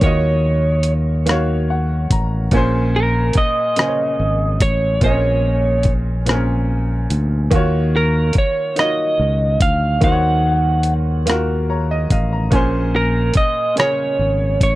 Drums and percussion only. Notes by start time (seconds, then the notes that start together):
0.01 kick, closed hi-hat
0.83 closed hi-hat
1.27 cross-stick, closed hi-hat
2.10 kick, closed hi-hat
2.51 kick, closed hi-hat
3.33 kick, closed hi-hat
3.76 cross-stick, closed hi-hat
4.60 kick, closed hi-hat
5.01 kick, closed hi-hat
5.83 kick, closed hi-hat
6.26 cross-stick, closed hi-hat
7.10 closed hi-hat
7.51 kick, closed hi-hat
8.33 kick, closed hi-hat
8.76 cross-stick, closed hi-hat
9.60 kick, closed hi-hat
10.01 kick, closed hi-hat
10.83 closed hi-hat
11.27 cross-stick, closed hi-hat
12.10 kick, closed hi-hat
12.52 kick, closed hi-hat
13.34 kick, closed hi-hat
13.77 cross-stick, closed hi-hat
14.61 kick, closed hi-hat